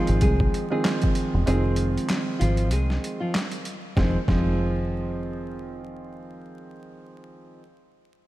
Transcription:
Already playing: upright piano D#3 F3 G#3 C4, nylon-string guitar F3 F4
0.07 fingered electric bass G#1, closed hi-hat
0.21 fingered electric bass C2, nylon-string guitar G#3 G#4, kick, closed hi-hat
0.40 kick
0.54 closed hi-hat
0.70 upright piano D#3 F3 G#3 C4, nylon-string guitar G#3 G#4
0.85 snare, clap, closed hi-hat
1.02 kick, closed hi-hat
1.15 closed hi-hat
1.34 fingered electric bass E1
1.46 fingered electric bass F1, upright piano D#3 F3 G#3 C4, nylon-string guitar G#3 G#4, closed hi-hat
1.76 closed hi-hat
1.98 closed hi-hat
2.09 snare, clap, closed hi-hat
2.39 fingered electric bass G#1, nylon-string guitar F3 F4, closed hi-hat
2.57 closed hi-hat
2.71 fingered electric bass C2, nylon-string guitar G#3 G#4, closed hi-hat
2.90 snare
3.04 closed hi-hat
3.20 nylon-string guitar F3 F4
3.35 snare, clap, closed hi-hat
3.52 closed hi-hat
3.65 closed hi-hat
3.96 fingered electric bass F1, upright piano D#3 F3 G#3 C4, nylon-string guitar F3, kick, snare
4.28 fingered electric bass F1, upright piano D#3 F3 G#3 C4, nylon-string guitar F3, kick, snare

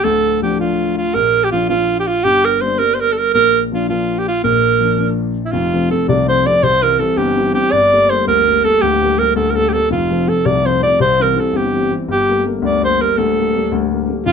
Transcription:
0.03 grand piano D1 D2, alto saxophone A4
0.42 grand piano F3 A3 D4, alto saxophone G4
0.59 grand piano F3 A3 D4, alto saxophone F4
0.97 alto saxophone F4
1.14 grand piano A#1 A#2, alto saxophone A#4
1.44 alto saxophone G4
1.52 grand piano F3 A#3 D4, alto saxophone F4
1.69 grand piano F3 A#3 D4, alto saxophone F4
2.00 alto saxophone G4
2.08 alto saxophone F4
2.24 grand piano G1 G2, alto saxophone G4
2.45 alto saxophone A#4
2.61 grand piano G3 A#3 D4, alto saxophone C5
2.79 grand piano G3 A#3 D4, alto saxophone A#4
2.94 alto saxophone C5
3.01 alto saxophone A#4
3.12 alto saxophone A4
3.18 alto saxophone A#4
3.34 grand piano A#1 A#2, alto saxophone A#4
3.72 grand piano F3 A#3 D4, alto saxophone F4
3.89 grand piano F3 A#3 D4, alto saxophone F4
4.19 alto saxophone G4
4.28 alto saxophone F4
4.43 grand piano A#1 A#2, alto saxophone A#4
4.81 grand piano F3 A#3 D4
4.97 grand piano F3 A#3 D4
5.45 alto saxophone E4
5.52 grand piano F1 F2, alto saxophone F4
5.74 grand piano F3 A3 C4
5.91 grand piano F3 A3 C4, alto saxophone A4
6.08 grand piano C2, alto saxophone D5
6.28 grand piano F3 A3 C4, alto saxophone C5
6.46 grand piano F3 A3 C4, alto saxophone D5
6.63 grand piano C2, alto saxophone C5
6.83 grand piano E3 G3 C4, alto saxophone A#4
6.99 grand piano E3 G3 C4, alto saxophone A4
7.17 grand piano G1, alto saxophone G4
7.37 grand piano E3 G3 C4
7.54 grand piano E3 G3 C4, alto saxophone G4
7.72 grand piano G1 G2, alto saxophone D5
7.92 grand piano G3 A3 A#3
8.10 grand piano G3 A3 A#3, alto saxophone C5
8.27 grand piano D2, alto saxophone A#4
8.48 grand piano G3 A3 A#3
8.64 grand piano G3 A3 A#3, alto saxophone A4
8.81 grand piano D1 D2, alto saxophone G4
9.02 grand piano G3 A3 A#3
9.18 grand piano G3 A3 A#3, alto saxophone A#4
9.36 grand piano D2, alto saxophone A4
9.50 alto saxophone A#4
9.55 grand piano G3 A3 A#3, alto saxophone A4
9.68 alto saxophone G4
9.73 grand piano G3 A3 A#3, alto saxophone A4
9.90 grand piano F1 F2, alto saxophone F4
10.10 grand piano F3 A3 C4
10.27 grand piano F3 A3 C4, alto saxophone A4
10.45 grand piano C2, alto saxophone D5
10.65 grand piano F3 A3 C4, alto saxophone C5
10.82 grand piano F3 A3 C4, alto saxophone D5
11.00 grand piano C2, alto saxophone C5
11.20 grand piano E3 G3 C4, alto saxophone A#4
11.36 grand piano E3 G3 C4, alto saxophone A4
11.53 grand piano G1, alto saxophone G4
11.73 grand piano E3 G3 C4
11.91 grand piano E3 G3 C4
12.08 grand piano G1 G2, alto saxophone G4
12.29 grand piano G3 A3 A#3
12.45 grand piano G3 A3 A#3
12.62 grand piano D2, alto saxophone D5
12.83 grand piano G3 A3 A#3, alto saxophone C5
13.00 grand piano G3 A3 A#3, alto saxophone A#4
13.18 grand piano D1 D2, alto saxophone A4
13.38 grand piano G3 A3 A#3
13.55 grand piano G3 A3 A#3
13.72 grand piano D2
13.91 grand piano G3 A3 A#3
14.08 grand piano G3 A3 A#3
14.26 grand piano F1 F2, alto saxophone F4

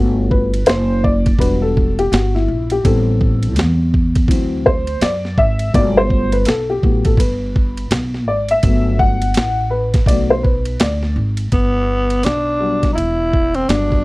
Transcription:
Already playing: upright bass G1, upright piano A3 B3 F#4
0.31 upright piano B4, kick
0.54 ride
0.66 upright bass F#1, upright piano C5, snare, hi-hat pedal, ride
1.04 upright piano D5, kick
1.26 kick, ride
1.39 upright bass E1, upright piano G3 D4 F#4 B4, kick, ride
1.62 upright piano A4
1.77 kick
1.99 upright piano G4, ride
2.12 upright bass G1, upright piano F#4, snare, hi-hat pedal, ride
2.35 upright piano E4, snare
2.48 upright bass A#1
2.70 upright piano G4, ride
2.83 upright bass A1, upright piano G3 B3 C4 A4, kick, ride
3.21 kick
3.43 ride
3.56 upright bass E2, snare, hi-hat pedal, ride
3.94 kick
4.15 kick, ride
4.28 upright bass D2, upright piano E3 F#3 C4, kick, ride
4.66 upright piano C5, kick
4.87 ride
5.01 upright bass F#2, upright piano D5, snare, hi-hat pedal, ride
5.25 snare
5.38 upright bass G#1, upright piano E5, kick
5.59 ride
5.73 upright bass G1, upright piano B2 F#3 A3 D5, kick, ride
5.97 upright piano C5
6.10 kick
6.32 upright piano B4, ride
6.45 upright bass B1, upright piano A4, snare, hi-hat pedal, ride
6.70 upright piano G4
6.82 upright bass A1, upright piano F#3 A3 B3, kick
7.05 upright piano A4, kick, ride
7.17 upright bass G1, upright piano B4, kick, ride
7.56 kick
7.77 ride
7.91 upright bass B1, snare, hi-hat pedal, ride
8.14 snare
8.27 upright bass G#1, upright piano D5
8.49 upright piano E5, ride
8.63 upright bass G1, upright piano F#3 A3 B3, kick, ride
8.99 upright piano F#5, kick
9.22 ride
9.34 upright bass A1, snare, hi-hat pedal, ride
9.70 upright piano B4
9.94 kick, snare, ride
10.06 upright bass B1, upright piano F#3 A3 B3 D5, kick, ride
10.30 upright piano C5
10.43 upright piano B4, kick
10.65 ride
10.80 upright bass D2, upright piano D5, snare, hi-hat pedal, ride
11.03 snare
11.16 upright bass G#1
11.37 ride
11.52 upright bass G1, tenor saxophone B3, kick, ride
12.10 ride
12.23 upright bass B1, tenor saxophone D4, snare, hi-hat pedal, ride
12.60 upright piano F#3 G3 B3 D4
12.83 kick, snare, ride
12.93 upright bass E1, tenor saxophone D#4 E4
12.98 ride
13.33 kick
13.54 tenor saxophone C4, ride
13.68 upright bass G1, upright piano F#3 G3 B3 D4, tenor saxophone D4, snare, hi-hat pedal, ride
13.92 kick

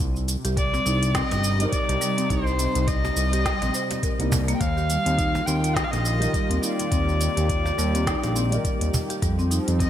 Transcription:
Already playing: analog synth pad C4
0.00 analog synth bass C2, analog synth pad C3, closed hi-hat, shaker
0.16 shaker
0.28 closed hi-hat, shaker
0.43 analog synth bass C2, analog synth pad G3, marimba G4, closed hi-hat, shaker
0.57 marimba G3, kamancheh D5, kick, closed hi-hat, shaker
0.73 marimba C4, cajon slap, shaker
0.86 analog synth bass C2, marimba D#4, shaker
1.00 analog synth pad D#4, closed hi-hat, shaker
1.14 marimba C4, kamancheh D#5, kick, snare, closed hi-hat, shaker
1.31 analog synth bass G1, cajon slap, closed hi-hat, shaker
1.44 shaker
1.58 felt piano G3 C4 D#4, closed hi-hat, shaker
1.62 felt piano A#4
1.72 kamancheh D5, kick, closed hi-hat, shaker
1.89 analog synth bass C2, marimba G4, closed hi-hat, shaker
2.01 marimba G3, shaker
2.17 marimba C4, cajon slap, closed hi-hat, shaker
2.30 analog synth bass C2, marimba D#4, kamancheh C5, kick, closed hi-hat, shaker
2.47 shaker
2.59 marimba C4, closed hi-hat, shaker
2.75 analog synth bass C2, closed hi-hat, shaker
2.87 kamancheh D#5, kick, closed hi-hat, shaker
3.05 cajon slap, shaker
3.16 analog synth bass C2, shaker
3.33 marimba G4, closed hi-hat, shaker
3.45 marimba G3, kick, snare, closed hi-hat, shaker
3.62 analog synth bass A#1, marimba C4, cajon slap, closed hi-hat, shaker
3.74 marimba C5, shaker
3.91 cajon slap, closed hi-hat, shaker
4.03 marimba A#4, kick, closed hi-hat, shaker
4.19 analog synth bass C2, felt piano G3 C4 D#4 A#4, marimba A#3, closed hi-hat, shaker
4.32 cajon bass, shaker
4.48 marimba A#3, closed hi-hat, shaker
4.55 kamancheh G5
4.60 analog synth bass D#2, analog synth pad D#3, kamancheh F5, kick, closed hi-hat, shaker
4.77 analog synth pad G4, marimba G4, shaker
4.84 analog synth pad F4
4.89 marimba G3, closed hi-hat, shaker
4.98 analog synth pad A#3
5.06 analog synth bass D#2, marimba C4, closed hi-hat, shaker
5.18 marimba D#4, kick, closed hi-hat, shaker
5.35 cajon slap, shaker
5.47 analog synth bass D#2, marimba C4, kamancheh G5, shaker
5.64 closed hi-hat, shaker
5.75 kamancheh D#5, kick, snare, closed hi-hat, shaker
5.84 kamancheh F5
5.91 analog synth bass A#1, kamancheh D#5, cajon slap, closed hi-hat, shaker
6.05 shaker
6.19 felt piano G3 D#4, marimba G4, closed hi-hat, shaker
6.23 felt piano A#4
6.33 marimba G3, kick, closed hi-hat, shaker
6.50 analog synth bass D#2, marimba C4, closed hi-hat, shaker
6.57 kamancheh D#5
6.62 marimba D#4, kamancheh D5, shaker
6.79 cajon slap, closed hi-hat, shaker
6.91 analog synth bass D#2, marimba C4, kick, closed hi-hat, shaker
7.09 shaker
7.21 closed hi-hat, shaker
7.37 analog synth bass D#2, closed hi-hat, shaker
7.49 kick, closed hi-hat, shaker
7.66 marimba G4, cajon slap, shaker
7.78 analog synth bass D#2, marimba G3, shaker
7.95 marimba C4, closed hi-hat, shaker
8.07 marimba D#4, kick, snare, closed hi-hat, shaker
8.23 analog synth bass A#1, cajon slap, closed hi-hat, shaker
8.36 marimba C4, shaker
8.50 felt piano G3 D#4 D5, closed hi-hat, shaker
8.54 felt piano A#4
8.65 kick, closed hi-hat, shaker
8.81 analog synth bass D#2, closed hi-hat, shaker
8.94 cajon bass, shaker
9.10 marimba G4, closed hi-hat, shaker
9.22 analog synth bass F2, analog synth pad F3, marimba G3, kick, closed hi-hat, shaker
9.39 marimba C4, shaker
9.44 analog synth pad C4 A4
9.51 marimba D#4, closed hi-hat, shaker
9.68 analog synth bass F2, closed hi-hat, shaker
9.80 marimba C4, kamancheh D#5, kick, closed hi-hat, shaker

